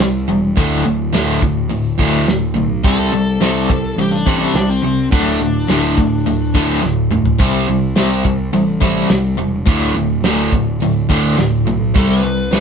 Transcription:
0.00 0.24 C2 medium
0.00 0.26 C3 medium
0.00 0.26 G3 medium
0.00 snare loud
0.00 open hi-hat soft
0.28 0.53 E1 medium
0.28 0.54 C3 medium
0.28 0.55 G3 medium
0.57 0.82 D1 loud
0.57 0.84 D2 medium
0.57 0.84 A2 medium
0.57 0.84 D3 medium
0.57 kick loud
0.57 open hi-hat soft
0.85 1.10 D1 medium
0.85 1.11 D2 medium
0.85 1.11 A2 medium
1.13 1.39 D1 medium
1.13 1.40 D2 medium
1.13 1.41 A2 medium
1.13 1.41 D3 medium
1.13 snare loud
1.13 open hi-hat soft
1.42 1.67 D1 medium
1.42 1.68 D2 medium
1.42 1.68 A2 medium
1.42 kick medium
1.71 1.96 D1 medium
1.71 1.97 D2 medium
1.71 1.96 A2 medium
1.71 open hi-hat soft
1.99 2.26 D2 medium
1.99 2.24 D2 medium
1.99 2.26 A2 medium
1.99 2.27 D3 loud
1.99 kick medium
2.27 2.53 D1 medium
2.27 2.53 D2 medium
2.27 2.53 A2 medium
2.27 snare loud
2.27 open hi-hat soft
2.55 2.80 B1 medium
2.55 2.82 D2 medium
2.55 2.82 A2 medium
2.84 3.09 C2 medium
2.84 3.11 C3 medium
2.84 3.12 G3 medium
2.84 3.12 C4 loud
2.84 3.95 A4 medium
2.84 kick loud
2.84 open hi-hat soft
3.12 3.37 C2 medium
3.12 3.39 C3 medium
3.12 3.39 G3 medium
3.40 3.66 C2 medium
3.40 3.68 C3 medium
3.40 3.68 G3 medium
3.40 3.68 C4 medium
3.40 snare loud
3.40 open hi-hat soft
3.70 3.95 C2 medium
3.70 3.96 C3 medium
3.70 3.96 G3 medium
3.70 kick medium
3.96 4.47 A1 medium
3.96 4.24 C3 medium
3.96 4.25 G3 medium
3.96 open hi-hat soft
4.01 4.14 G4 medium
4.11 4.39 D4 medium
4.26 4.53 C3 medium
4.26 4.54 G3 loud
4.26 4.54 C4 loud
4.26 kick medium
4.41 4.69 D4 medium
4.54 4.79 C2 medium
4.54 4.81 C3 medium
4.54 4.81 G3 medium
4.54 snare loud
4.54 open hi-hat soft
4.70 5.11 C4 medium
4.82 5.08 C2 medium
4.82 5.09 C3 medium
4.82 5.09 G3 medium
5.12 5.37 D1 medium
5.12 5.39 D2 medium
5.12 5.39 A2 loud
5.12 5.40 D3 medium
5.12 6.80 D4 loud
5.12 kick loud
5.12 open hi-hat soft
5.40 5.65 D1 medium
5.40 5.66 D2 medium
5.40 5.67 A2 medium
5.67 5.93 D1 medium
5.67 5.95 D2 medium
5.67 5.96 A2 medium
5.67 5.96 D3 medium
5.67 snare medium
5.67 open hi-hat soft
5.97 6.22 D1 medium
5.97 6.24 D2 medium
5.97 6.24 A2 medium
5.97 kick medium
5.97 snare soft
6.26 6.51 D1 medium
6.26 6.52 D2 medium
6.26 6.52 A2 medium
6.26 open hi-hat soft
6.55 6.80 D2 medium
6.55 6.81 D2 medium
6.55 6.82 A2 medium
6.55 6.82 D3 medium
6.55 kick medium
6.82 7.08 D1 medium
6.82 7.08 D2 medium
6.82 7.09 A2 medium
6.82 snare medium
7.11 7.36 D1 medium
7.11 7.37 D2 medium
7.11 7.37 A2 medium
7.11 mid tom medium
7.26 floor tom medium
7.39 7.65 C2 medium
7.39 7.66 C3 medium
7.39 7.66 G3 medium
7.39 7.67 C4 loud
7.39 kick loud
7.39 open hi-hat soft
7.68 7.93 C2 medium
7.68 7.94 C3 medium
7.68 7.95 G3 medium
7.96 8.21 C2 medium
7.96 8.23 C3 medium
7.96 8.24 G3 medium
7.96 8.24 C4 medium
7.96 snare loud
7.96 open hi-hat soft
8.24 8.50 C2 medium
8.24 8.51 C3 medium
8.24 8.51 G3 medium
8.24 kick medium
8.53 9.03 A1 medium
8.53 8.79 C3 medium
8.53 8.80 G3 medium
8.53 open hi-hat soft
8.81 9.09 C3 medium
8.81 9.09 G3 medium
8.81 9.09 C4 medium
8.81 kick medium
9.10 9.35 C2 medium
9.10 9.36 C3 medium
9.10 9.36 G3 medium
9.10 snare loud
9.10 open hi-hat soft
9.37 9.64 E1 medium
9.37 9.64 C3 medium
9.37 9.65 G3 medium
9.66 9.92 D1 medium
9.66 9.94 D2 medium
9.66 9.94 A2 medium
9.66 9.94 D3 loud
9.66 kick loud
9.66 open hi-hat medium
9.95 10.20 D1 medium
9.95 10.22 D2 medium
9.95 10.22 A2 medium
10.22 10.48 D1 medium
10.22 10.52 D2 medium
10.22 10.52 A2 medium
10.22 10.52 D3 medium
10.22 snare loud
10.22 open hi-hat soft
10.52 10.78 D1 medium
10.52 10.79 D2 medium
10.52 10.80 A2 medium
10.52 kick medium
10.80 11.06 D1 medium
10.80 11.08 D2 medium
10.80 11.08 A2 medium
10.80 open hi-hat soft
11.09 11.37 D2 medium
11.09 11.35 D2 medium
11.09 11.37 A2 loud
11.09 11.38 D3 medium
11.09 kick medium
11.38 11.63 D1 medium
11.38 11.65 D2 medium
11.38 11.64 A2 medium
11.38 snare loud
11.38 open hi-hat soft
11.65 11.91 B1 medium
11.65 11.93 D2 medium
11.65 11.93 A2 medium
11.95 12.21 C2 medium
11.95 12.23 C3 medium
11.95 12.23 G3 medium
11.95 12.23 C4 medium
11.95 12.10 A4 medium
11.95 kick loud
11.95 open hi-hat soft
12.10 12.60 B4 medium
12.23 12.48 C2 medium
12.23 12.50 C3 medium
12.23 12.50 G3 medium
12.51 12.60 C2 medium
12.51 12.60 C3 medium
12.51 12.60 G3 loud
12.51 12.60 C4 medium
12.51 snare loud
12.51 open hi-hat soft

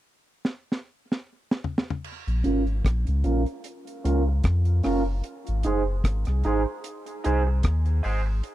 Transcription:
0.45 snare medium
0.72 snare medium
1.12 snare medium
1.51 snare medium
1.64 floor tom medium
1.78 snare loud
1.90 floor tom medium
2.04 crash medium
2.27 2.43 A#1 loud
2.27 closed hi-hat medium
2.44 2.82 G#1 medium
2.44 2.61 C#4 medium
2.44 2.61 F4 medium
2.44 2.61 A#4 medium
2.44 closed hi-hat medium
2.67 closed hi-hat soft
2.85 3.05 A#1 loud
2.85 kick medium
2.85 cross-stick loud
2.85 closed hi-hat medium
3.07 3.24 C#2 loud
3.07 closed hi-hat medium
3.24 3.46 A#1 loud
3.24 3.41 C#4 medium
3.24 3.41 F4 medium
3.24 3.42 A#4 medium
3.24 closed hi-hat medium
3.46 closed hi-hat soft
3.64 closed hi-hat medium
3.87 closed hi-hat soft
4.04 4.42 C#2 medium
4.04 4.21 C#4 medium
4.04 4.21 F4 loud
4.04 4.22 A#4 loud
4.04 closed hi-hat medium
4.27 muted clean electric guitar stroke soft
4.44 4.81 F2 loud
4.44 kick loud
4.44 cross-stick loud
4.44 closed hi-hat medium
4.65 closed hi-hat medium
4.83 5.22 F#1 medium
4.83 5.01 C#4 medium
4.83 5.01 F4 medium
4.83 5.02 A#4 medium
4.83 cross-stick medium
4.83 open hi-hat medium
5.24 closed hi-hat medium
5.47 5.64 G#1 loud
5.47 closed hi-hat medium
5.63 6.02 F#1 medium
5.63 5.81 D#4 medium
5.63 5.82 G#4 medium
5.63 5.82 C5 loud
5.63 closed hi-hat medium
6.04 6.25 G#1 medium
6.04 kick loud
6.04 cross-stick loud
6.04 closed hi-hat medium
6.25 6.43 C2 medium
6.25 cross-stick medium
6.25 closed hi-hat medium
6.43 6.66 G#1 medium
6.43 6.61 D#4 medium
6.43 6.62 G#4 medium
6.43 6.62 C5 medium
6.43 closed hi-hat medium
6.84 closed hi-hat medium
7.06 closed hi-hat medium
7.24 7.62 C2 medium
7.24 7.41 D#4 medium
7.24 7.41 G#4 medium
7.24 7.42 C5 medium
7.24 closed hi-hat medium
7.47 muted clean electric guitar stroke soft
7.63 8.01 D#2 medium
7.63 kick loud
7.63 cross-stick loud
7.63 closed hi-hat medium
7.86 closed hi-hat medium
8.03 8.42 G#1 loud
8.03 8.20 D#4 medium
8.03 8.21 G#4 medium
8.03 8.21 C5 medium
8.03 open hi-hat medium
8.26 muted clean electric guitar stroke soft
8.44 closed hi-hat medium

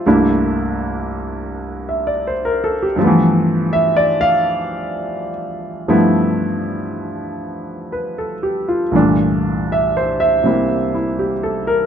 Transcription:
0.00 0.20 F4 soft
0.06 2.97 C2 medium
0.06 2.95 G2 medium
0.06 2.97 A3 medium
0.06 2.98 A#3 medium
0.06 2.98 D4 medium
0.06 2.98 E4 medium
1.89 2.10 E5 soft
2.07 2.32 D5 soft
2.27 2.60 C5 soft
2.45 2.75 A#4 medium
2.64 2.85 A4 medium
2.83 3.06 G4 medium
2.96 5.87 G2 medium
2.96 5.87 F3 medium
3.01 5.88 A3 medium
3.01 5.88 B3 medium
3.07 5.94 E3 medium
3.73 3.95 E5 medium
3.97 4.19 D5 medium
4.21 5.29 F5 medium
5.88 8.91 G2 medium
5.88 8.93 F3 medium
5.88 8.93 A3 medium
5.88 8.94 B3 medium
5.88 8.94 E4 medium
7.92 8.32 B4 soft
8.18 8.66 A4 soft
8.43 8.83 G4 soft
8.68 9.08 F4 medium
8.91 11.86 C2 soft
8.91 11.86 G2 soft
8.91 11.86 A#2 soft
8.91 11.86 E3 soft
8.91 11.86 A3 soft
8.96 11.86 D4 medium
9.72 9.95 E5 medium
9.97 10.20 C5 medium
10.20 11.31 E5 medium
10.43 11.86 C3 soft
10.43 11.86 G3 soft
10.43 11.86 A#3 soft
10.43 11.86 C4 soft
10.43 10.93 E4 soft
10.95 11.32 E4 soft
11.19 11.65 G4 soft
11.43 11.82 A4 soft
11.67 11.86 A#4 medium

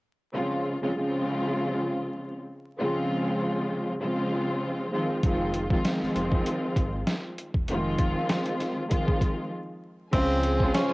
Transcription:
0.32 0.77 C#3 medium
0.32 0.77 F3 medium
0.32 0.77 G#3 medium
0.32 0.77 C4 medium
0.32 0.77 F4 loud
0.81 0.94 C#3 medium
0.81 0.95 F3 medium
0.81 0.95 G#3 medium
0.81 0.95 C4 medium
0.81 0.96 F4 loud
0.95 2.37 C#3 loud
0.95 2.38 F3 medium
0.95 2.38 G#3 medium
0.95 2.38 C4 medium
0.95 2.38 F4 loud
2.78 3.92 C#3 loud
2.78 3.92 F3 medium
2.78 3.93 G#3 loud
2.78 3.93 C4 medium
2.78 3.93 F4 loud
4.00 4.92 C#3 medium
4.00 4.90 F3 medium
4.00 4.91 G#3 medium
4.00 4.91 C4 medium
4.00 4.91 F4 loud
4.91 5.20 D#3 medium
4.91 5.21 F3 medium
4.91 5.21 G#3 medium
4.91 5.21 C4 medium
4.91 5.21 F4 medium
5.23 5.78 F1 loud
5.23 5.67 D#3 loud
5.23 5.67 F3 medium
5.23 5.67 G#3 medium
5.23 5.68 C4 medium
5.23 5.68 F4 loud
5.23 kick loud
5.23 closed hi-hat medium
5.54 closed hi-hat medium
5.70 5.84 D#3 medium
5.70 5.84 F3 medium
5.70 5.85 G#3 medium
5.70 5.85 C4 medium
5.70 5.85 F4 loud
5.70 kick loud
5.85 7.27 D#3 medium
5.85 7.27 F3 loud
5.85 7.28 G#3 loud
5.85 7.28 C4 loud
5.85 7.28 F4 loud
5.85 snare loud
5.85 closed hi-hat medium
6.02 6.07 F1 soft
6.02 snare soft
6.15 6.43 F1 medium
6.15 closed hi-hat medium
6.32 kick medium
6.46 closed hi-hat medium
6.76 7.04 G#1 medium
6.76 kick medium
6.76 closed hi-hat medium
7.07 snare loud
7.07 closed hi-hat medium
7.38 closed hi-hat medium
7.54 7.66 E1 medium
7.54 kick medium
7.68 7.96 F1 loud
7.68 8.83 D#3 loud
7.68 8.83 F3 medium
7.68 8.83 G#3 medium
7.68 8.83 C4 loud
7.68 8.83 F4 loud
7.68 closed hi-hat medium
7.99 8.14 F1 medium
7.99 kick loud
7.99 closed hi-hat medium
8.29 snare loud
8.29 closed hi-hat loud
8.46 closed hi-hat soft
8.60 snare soft
8.60 closed hi-hat medium
8.88 9.51 D#3 medium
8.88 9.51 F3 medium
8.88 9.51 G#3 medium
8.88 9.51 C4 medium
8.88 9.51 F4 loud
8.88 kick medium
8.88 closed hi-hat loud
9.08 kick medium
9.21 kick medium
9.21 closed hi-hat medium
10.12 10.68 C#2 loud
10.12 10.56 C#3 loud
10.12 10.93 C#3 medium
10.12 10.56 F3 medium
10.12 10.56 G#3 medium
10.12 10.93 G#3 medium
10.12 10.57 C4 medium
10.12 10.70 C4 loud
10.12 10.57 F4 loud
10.12 10.93 F4 medium
10.12 10.93 G#4 loud
10.12 10.93 G#4 medium
10.12 10.93 F5 medium
10.12 10.93 G#5 medium
10.12 kick loud
10.12 closed hi-hat loud
10.12 crash loud
10.43 closed hi-hat medium
10.60 10.74 C#3 loud
10.60 10.74 F3 medium
10.60 10.74 G#3 medium
10.60 10.80 C4 medium
10.60 10.75 F4 loud
10.60 kick loud
10.74 10.93 C#3 loud
10.74 10.93 F3 loud
10.74 10.93 G#3 medium
10.74 10.93 C#4 medium
10.74 10.93 F4 loud
10.74 10.93 C5 loud
10.74 snare loud
10.74 closed hi-hat loud

